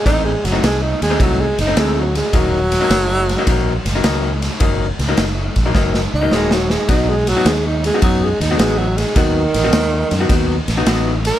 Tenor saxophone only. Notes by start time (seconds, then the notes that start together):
0.06 D#4
0.25 G#3
0.46 F#3
0.65 G#3
0.82 D#4
1.03 G#3
1.23 F#3
1.40 G#3
1.61 D#4
1.79 G#3
2.00 F#3
2.17 G#3
2.37 F#3
6.15 D#4
6.35 G#3
6.53 F#3
6.72 G#3
6.90 D#4
7.09 G#3
7.29 F#3
7.48 G#3
7.67 D#4
7.86 G#3
8.03 F#3
8.24 G#3
8.41 D#4
8.58 G#3
8.78 F#3
8.97 G#3
9.17 D#3
11.27 A#4